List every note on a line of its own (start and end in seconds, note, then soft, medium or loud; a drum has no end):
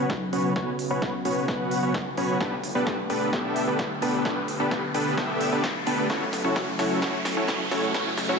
0.00 2.37 C#3 medium
0.00 2.37 F#3 medium
0.00 0.12 B3 medium
0.00 6.06 B3 medium
0.00 0.12 C#4 medium
0.00 0.12 F#4 medium
0.00 2.37 F#4 medium
0.00 0.12 B4 medium
0.00 0.12 C#5 medium
0.00 riser medium
0.10 0.29 B1 medium
0.10 kick loud
0.10 snare soft
0.33 0.52 B1 loud
0.33 0.53 B3 medium
0.33 0.53 C#4 medium
0.33 0.53 F#4 medium
0.33 0.53 B4 medium
0.33 0.53 C#5 medium
0.33 open hi-hat loud
0.56 0.75 B1 medium
0.56 0.70 B3 loud
0.56 0.70 C#4 medium
0.56 0.70 F#4 medium
0.56 0.70 B4 medium
0.56 0.70 C#5 loud
0.56 kick loud
0.56 snare medium
0.79 0.98 B1 loud
0.79 open hi-hat loud
0.90 1.13 B3 medium
0.90 1.13 C#4 medium
0.90 1.13 F#4 medium
0.90 1.13 B4 medium
0.90 1.13 C#5 medium
1.02 1.12 B1 medium
1.02 kick loud
1.02 snare medium
1.25 1.35 B1 medium
1.25 1.46 B3 medium
1.25 1.46 C#4 medium
1.25 1.45 F#4 medium
1.25 1.46 B4 medium
1.25 1.46 C#5 loud
1.25 open hi-hat loud
1.37 1.46 B1 medium
1.48 1.58 B1 medium
1.48 1.80 B3 medium
1.48 1.80 C#4 medium
1.48 1.80 F#4 medium
1.48 1.80 B4 medium
1.48 1.80 F#5 medium
1.48 kick loud
1.48 snare medium
1.71 1.81 B1 loud
1.71 open hi-hat loud
1.83 1.97 B3 medium
1.83 1.97 C#4 medium
1.83 1.97 F#4 medium
1.83 1.97 B4 medium
1.83 1.97 C#5 medium
1.94 2.14 B1 medium
1.94 kick loud
1.94 snare medium
2.17 2.37 B1 loud
2.17 2.38 B3 medium
2.17 2.38 C#4 medium
2.17 2.38 F#4 medium
2.17 2.38 B4 medium
2.17 2.38 C#5 medium
2.17 open hi-hat loud
2.40 2.60 G1 loud
2.40 6.06 D3 medium
2.40 8.39 A3 medium
2.40 2.54 D4 medium
2.40 6.06 G4 medium
2.40 2.54 G4 medium
2.40 2.54 A4 medium
2.40 kick loud
2.40 snare medium
2.64 2.83 G1 loud
2.64 open hi-hat loud
2.75 2.97 B3 medium
2.75 2.97 D4 medium
2.75 2.97 G4 medium
2.75 2.97 A4 medium
2.75 2.97 B4 medium
2.87 2.96 G1 medium
2.87 kick loud
2.87 snare medium
3.10 3.19 G1 medium
3.10 3.30 B3 medium
3.10 3.30 D4 medium
3.10 3.30 G4 medium
3.10 3.30 A4 medium
3.10 3.30 B4 loud
3.10 open hi-hat loud
3.21 3.31 G1 medium
3.33 3.43 G1 medium
3.33 3.65 B3 medium
3.33 3.65 D4 medium
3.33 3.65 G4 medium
3.33 3.65 A4 medium
3.33 3.65 E5 medium
3.33 kick loud
3.33 snare medium
3.56 3.66 G1 loud
3.56 open hi-hat loud
3.67 3.81 B3 medium
3.67 3.81 D4 medium
3.67 3.81 G4 medium
3.67 3.81 A4 medium
3.67 3.81 B4 medium
3.79 3.98 G1 medium
3.79 kick loud
3.79 snare medium
4.02 4.21 G1 loud
4.02 4.22 B3 medium
4.02 4.22 D4 medium
4.02 4.22 G4 medium
4.02 4.22 A4 medium
4.02 4.22 B4 medium
4.02 open hi-hat loud
4.25 4.45 G1 medium
4.25 4.39 B3 loud
4.25 4.39 D4 medium
4.25 4.39 G4 medium
4.25 4.39 A4 medium
4.25 4.39 B4 loud
4.25 kick loud
4.25 snare medium
4.48 4.68 G1 loud
4.48 open hi-hat loud
4.60 4.82 B3 medium
4.60 4.82 D4 medium
4.60 4.82 G4 medium
4.60 4.82 A4 medium
4.60 4.82 B4 medium
4.71 4.81 G1 medium
4.71 kick loud
4.71 snare medium
4.94 5.04 G1 medium
4.94 5.15 B3 medium
4.94 5.15 D4 medium
4.94 5.15 G4 medium
4.94 5.15 A4 medium
4.94 5.15 B4 loud
4.94 open hi-hat loud
5.06 5.16 G1 medium
5.18 5.27 G1 medium
5.18 5.49 B3 medium
5.18 5.49 D4 medium
5.18 5.49 G4 medium
5.18 5.49 A4 medium
5.18 5.49 E5 medium
5.18 kick loud
5.18 snare medium
5.41 5.50 G1 medium
5.41 open hi-hat loud
5.52 5.66 B3 medium
5.52 5.66 D4 medium
5.52 5.66 G4 medium
5.52 5.66 A4 medium
5.52 5.66 B4 medium
5.64 5.83 G1 medium
5.64 kick loud
5.64 snare medium
5.87 6.06 G1 loud
5.87 6.07 B3 medium
5.87 6.07 D4 medium
5.87 6.07 G4 medium
5.87 6.07 A4 medium
5.87 6.07 B4 medium
5.87 open hi-hat loud
6.10 6.29 A1 medium
6.10 8.39 C#3 medium
6.10 8.39 F#3 medium
6.10 6.24 C#4 medium
6.10 7.92 E4 medium
6.10 6.24 E4 medium
6.10 6.24 F#4 medium
6.10 6.24 A4 medium
6.10 6.24 C#5 loud
6.10 kick loud
6.10 snare medium
6.33 6.52 A1 loud
6.33 snare medium
6.33 open hi-hat loud
6.44 6.67 C#4 medium
6.44 6.67 E4 medium
6.44 6.67 F#4 medium
6.44 6.67 A4 medium
6.44 6.67 C#5 medium
6.56 6.66 A1 medium
6.56 kick loud
6.56 snare medium
6.79 6.89 A1 medium
6.79 6.99 C#4 medium
6.79 6.99 E4 medium
6.79 6.99 F#4 medium
6.79 6.99 A4 medium
6.79 6.99 C#5 medium
6.79 snare medium
6.79 open hi-hat loud
6.91 7.00 A1 medium
7.02 7.12 A1 medium
7.02 7.16 C#4 medium
7.02 7.16 F#4 medium
7.02 7.16 C#5 loud
7.02 kick loud
7.02 snare medium
7.25 7.35 A1 loud
7.25 snare medium
7.25 open hi-hat loud
7.37 7.59 C#4 medium
7.37 7.59 E4 medium
7.37 7.59 F#4 medium
7.37 7.59 A4 medium
7.37 7.59 C#5 medium
7.48 7.68 A1 medium
7.48 kick loud
7.48 snare medium
7.71 7.91 A1 loud
7.71 7.92 C#4 medium
7.71 7.92 E4 medium
7.71 7.92 F#4 medium
7.71 7.92 A4 medium
7.71 7.92 C#5 medium
7.71 snare medium
7.71 open hi-hat loud
7.94 8.14 A1 loud
7.94 8.08 C#4 loud
7.94 8.08 E4 medium
7.94 8.39 F#4 medium
7.94 8.08 F#4 medium
7.94 8.08 A4 medium
7.94 8.08 C#5 loud
7.94 kick loud
7.94 snare medium
8.18 8.37 A1 loud
8.18 snare medium
8.18 open hi-hat loud
8.29 8.39 C#4 medium
8.29 8.39 E4 medium
8.29 8.39 F#4 medium
8.29 8.39 A4 medium
8.29 8.39 C#5 medium